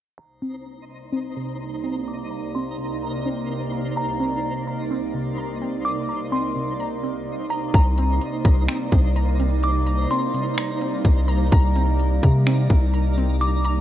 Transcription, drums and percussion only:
0, 0, Header, 1, 2, 480
1, 0, Start_track
1, 0, Key_signature, -3, "minor"
1, 0, Tempo, 472441
1, 186, Time_signature, 4, 2, 24, 8
1, 14029, End_track
2, 0, Start_track
2, 0, Title_t, "Drums"
2, 7865, Note_on_c, 9, 36, 127
2, 7866, Note_on_c, 9, 42, 70
2, 7967, Note_off_c, 9, 36, 0
2, 7967, Note_off_c, 9, 42, 0
2, 8104, Note_on_c, 9, 42, 84
2, 8205, Note_off_c, 9, 42, 0
2, 8345, Note_on_c, 9, 42, 65
2, 8447, Note_off_c, 9, 42, 0
2, 8586, Note_on_c, 9, 36, 94
2, 8588, Note_on_c, 9, 42, 70
2, 8688, Note_off_c, 9, 36, 0
2, 8690, Note_off_c, 9, 42, 0
2, 8826, Note_on_c, 9, 26, 121
2, 8826, Note_on_c, 9, 42, 63
2, 8928, Note_off_c, 9, 26, 0
2, 8928, Note_off_c, 9, 42, 0
2, 9065, Note_on_c, 9, 36, 104
2, 9065, Note_on_c, 9, 42, 81
2, 9167, Note_off_c, 9, 36, 0
2, 9167, Note_off_c, 9, 42, 0
2, 9306, Note_on_c, 9, 42, 76
2, 9408, Note_off_c, 9, 42, 0
2, 9547, Note_on_c, 9, 42, 83
2, 9649, Note_off_c, 9, 42, 0
2, 9785, Note_on_c, 9, 42, 72
2, 9887, Note_off_c, 9, 42, 0
2, 10023, Note_on_c, 9, 42, 87
2, 10124, Note_off_c, 9, 42, 0
2, 10266, Note_on_c, 9, 42, 64
2, 10368, Note_off_c, 9, 42, 0
2, 10508, Note_on_c, 9, 42, 69
2, 10610, Note_off_c, 9, 42, 0
2, 10747, Note_on_c, 9, 26, 122
2, 10747, Note_on_c, 9, 42, 62
2, 10848, Note_off_c, 9, 26, 0
2, 10848, Note_off_c, 9, 42, 0
2, 10986, Note_on_c, 9, 42, 78
2, 11088, Note_off_c, 9, 42, 0
2, 11225, Note_on_c, 9, 36, 87
2, 11226, Note_on_c, 9, 42, 74
2, 11327, Note_off_c, 9, 36, 0
2, 11327, Note_off_c, 9, 42, 0
2, 11468, Note_on_c, 9, 42, 80
2, 11570, Note_off_c, 9, 42, 0
2, 11705, Note_on_c, 9, 36, 127
2, 11705, Note_on_c, 9, 42, 74
2, 11807, Note_off_c, 9, 36, 0
2, 11807, Note_off_c, 9, 42, 0
2, 11943, Note_on_c, 9, 42, 85
2, 12045, Note_off_c, 9, 42, 0
2, 12186, Note_on_c, 9, 42, 67
2, 12287, Note_off_c, 9, 42, 0
2, 12426, Note_on_c, 9, 36, 97
2, 12428, Note_on_c, 9, 42, 69
2, 12527, Note_off_c, 9, 36, 0
2, 12530, Note_off_c, 9, 42, 0
2, 12667, Note_on_c, 9, 26, 123
2, 12667, Note_on_c, 9, 42, 63
2, 12768, Note_off_c, 9, 42, 0
2, 12769, Note_off_c, 9, 26, 0
2, 12905, Note_on_c, 9, 36, 106
2, 12906, Note_on_c, 9, 42, 77
2, 13007, Note_off_c, 9, 36, 0
2, 13008, Note_off_c, 9, 42, 0
2, 13146, Note_on_c, 9, 42, 73
2, 13248, Note_off_c, 9, 42, 0
2, 13388, Note_on_c, 9, 42, 80
2, 13490, Note_off_c, 9, 42, 0
2, 13625, Note_on_c, 9, 42, 72
2, 13727, Note_off_c, 9, 42, 0
2, 13863, Note_on_c, 9, 42, 84
2, 13965, Note_off_c, 9, 42, 0
2, 14029, End_track
0, 0, End_of_file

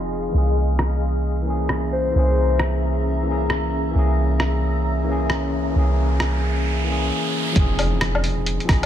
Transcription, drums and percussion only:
0, 0, Header, 1, 2, 480
1, 0, Start_track
1, 0, Tempo, 451128
1, 363, Time_signature, 4, 2, 24, 8
1, 9425, End_track
2, 0, Start_track
2, 0, Title_t, "Drums"
2, 840, Note_on_c, 9, 37, 93
2, 946, Note_off_c, 9, 37, 0
2, 1800, Note_on_c, 9, 37, 94
2, 1907, Note_off_c, 9, 37, 0
2, 2761, Note_on_c, 9, 37, 93
2, 2867, Note_off_c, 9, 37, 0
2, 3723, Note_on_c, 9, 37, 87
2, 3829, Note_off_c, 9, 37, 0
2, 4680, Note_on_c, 9, 37, 88
2, 4786, Note_off_c, 9, 37, 0
2, 5636, Note_on_c, 9, 37, 89
2, 5742, Note_off_c, 9, 37, 0
2, 6597, Note_on_c, 9, 37, 94
2, 6704, Note_off_c, 9, 37, 0
2, 8042, Note_on_c, 9, 42, 58
2, 8043, Note_on_c, 9, 36, 113
2, 8149, Note_off_c, 9, 36, 0
2, 8149, Note_off_c, 9, 42, 0
2, 8286, Note_on_c, 9, 46, 74
2, 8286, Note_on_c, 9, 77, 38
2, 8392, Note_off_c, 9, 46, 0
2, 8392, Note_off_c, 9, 77, 0
2, 8523, Note_on_c, 9, 37, 111
2, 8523, Note_on_c, 9, 42, 57
2, 8630, Note_off_c, 9, 37, 0
2, 8630, Note_off_c, 9, 42, 0
2, 8671, Note_on_c, 9, 77, 68
2, 8765, Note_on_c, 9, 46, 67
2, 8778, Note_off_c, 9, 77, 0
2, 8871, Note_off_c, 9, 46, 0
2, 9006, Note_on_c, 9, 42, 57
2, 9113, Note_off_c, 9, 42, 0
2, 9155, Note_on_c, 9, 42, 34
2, 9246, Note_on_c, 9, 36, 104
2, 9246, Note_on_c, 9, 37, 108
2, 9246, Note_on_c, 9, 46, 75
2, 9261, Note_off_c, 9, 42, 0
2, 9352, Note_off_c, 9, 36, 0
2, 9352, Note_off_c, 9, 37, 0
2, 9352, Note_off_c, 9, 46, 0
2, 9425, End_track
0, 0, End_of_file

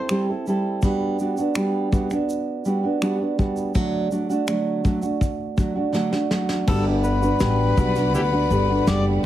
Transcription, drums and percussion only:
0, 0, Header, 1, 2, 480
1, 0, Start_track
1, 0, Key_signature, 1, "major"
1, 0, Tempo, 730816
1, 545, Time_signature, 4, 2, 24, 8
1, 6080, End_track
2, 0, Start_track
2, 0, Title_t, "Drums"
2, 61, Note_on_c, 9, 26, 96
2, 62, Note_on_c, 9, 82, 70
2, 126, Note_off_c, 9, 26, 0
2, 128, Note_off_c, 9, 82, 0
2, 307, Note_on_c, 9, 82, 39
2, 373, Note_off_c, 9, 82, 0
2, 539, Note_on_c, 9, 82, 62
2, 543, Note_on_c, 9, 36, 92
2, 605, Note_off_c, 9, 82, 0
2, 609, Note_off_c, 9, 36, 0
2, 783, Note_on_c, 9, 82, 47
2, 848, Note_off_c, 9, 82, 0
2, 901, Note_on_c, 9, 82, 45
2, 967, Note_off_c, 9, 82, 0
2, 1019, Note_on_c, 9, 82, 75
2, 1021, Note_on_c, 9, 26, 95
2, 1084, Note_off_c, 9, 82, 0
2, 1086, Note_off_c, 9, 26, 0
2, 1265, Note_on_c, 9, 36, 90
2, 1266, Note_on_c, 9, 82, 45
2, 1330, Note_off_c, 9, 36, 0
2, 1332, Note_off_c, 9, 82, 0
2, 1382, Note_on_c, 9, 82, 46
2, 1387, Note_on_c, 9, 26, 30
2, 1447, Note_off_c, 9, 82, 0
2, 1452, Note_off_c, 9, 26, 0
2, 1508, Note_on_c, 9, 82, 74
2, 1574, Note_off_c, 9, 82, 0
2, 1741, Note_on_c, 9, 82, 46
2, 1807, Note_off_c, 9, 82, 0
2, 1983, Note_on_c, 9, 26, 84
2, 1985, Note_on_c, 9, 82, 67
2, 2049, Note_off_c, 9, 26, 0
2, 2051, Note_off_c, 9, 82, 0
2, 2226, Note_on_c, 9, 36, 83
2, 2226, Note_on_c, 9, 82, 40
2, 2292, Note_off_c, 9, 36, 0
2, 2292, Note_off_c, 9, 82, 0
2, 2341, Note_on_c, 9, 82, 42
2, 2407, Note_off_c, 9, 82, 0
2, 2461, Note_on_c, 9, 82, 62
2, 2464, Note_on_c, 9, 36, 100
2, 2527, Note_off_c, 9, 82, 0
2, 2530, Note_off_c, 9, 36, 0
2, 2702, Note_on_c, 9, 82, 49
2, 2768, Note_off_c, 9, 82, 0
2, 2827, Note_on_c, 9, 82, 43
2, 2892, Note_off_c, 9, 82, 0
2, 2940, Note_on_c, 9, 82, 78
2, 2942, Note_on_c, 9, 26, 95
2, 3006, Note_off_c, 9, 82, 0
2, 3008, Note_off_c, 9, 26, 0
2, 3184, Note_on_c, 9, 36, 88
2, 3184, Note_on_c, 9, 82, 43
2, 3250, Note_off_c, 9, 36, 0
2, 3250, Note_off_c, 9, 82, 0
2, 3299, Note_on_c, 9, 82, 45
2, 3364, Note_off_c, 9, 82, 0
2, 3423, Note_on_c, 9, 36, 83
2, 3428, Note_on_c, 9, 82, 70
2, 3489, Note_off_c, 9, 36, 0
2, 3494, Note_off_c, 9, 82, 0
2, 3662, Note_on_c, 9, 82, 44
2, 3663, Note_on_c, 9, 36, 85
2, 3727, Note_off_c, 9, 82, 0
2, 3728, Note_off_c, 9, 36, 0
2, 3903, Note_on_c, 9, 38, 48
2, 3969, Note_off_c, 9, 38, 0
2, 4022, Note_on_c, 9, 38, 48
2, 4088, Note_off_c, 9, 38, 0
2, 4142, Note_on_c, 9, 38, 72
2, 4208, Note_off_c, 9, 38, 0
2, 4262, Note_on_c, 9, 38, 78
2, 4328, Note_off_c, 9, 38, 0
2, 4383, Note_on_c, 9, 49, 99
2, 4385, Note_on_c, 9, 36, 110
2, 4448, Note_off_c, 9, 49, 0
2, 4451, Note_off_c, 9, 36, 0
2, 4624, Note_on_c, 9, 82, 55
2, 4689, Note_off_c, 9, 82, 0
2, 4746, Note_on_c, 9, 82, 53
2, 4812, Note_off_c, 9, 82, 0
2, 4860, Note_on_c, 9, 82, 89
2, 4862, Note_on_c, 9, 38, 108
2, 4926, Note_off_c, 9, 82, 0
2, 4928, Note_off_c, 9, 38, 0
2, 5106, Note_on_c, 9, 36, 98
2, 5107, Note_on_c, 9, 82, 50
2, 5172, Note_off_c, 9, 36, 0
2, 5173, Note_off_c, 9, 82, 0
2, 5225, Note_on_c, 9, 82, 54
2, 5230, Note_on_c, 9, 38, 33
2, 5291, Note_off_c, 9, 82, 0
2, 5296, Note_off_c, 9, 38, 0
2, 5351, Note_on_c, 9, 82, 80
2, 5417, Note_off_c, 9, 82, 0
2, 5588, Note_on_c, 9, 82, 54
2, 5654, Note_off_c, 9, 82, 0
2, 5827, Note_on_c, 9, 38, 104
2, 5829, Note_on_c, 9, 82, 82
2, 5893, Note_off_c, 9, 38, 0
2, 5895, Note_off_c, 9, 82, 0
2, 6080, End_track
0, 0, End_of_file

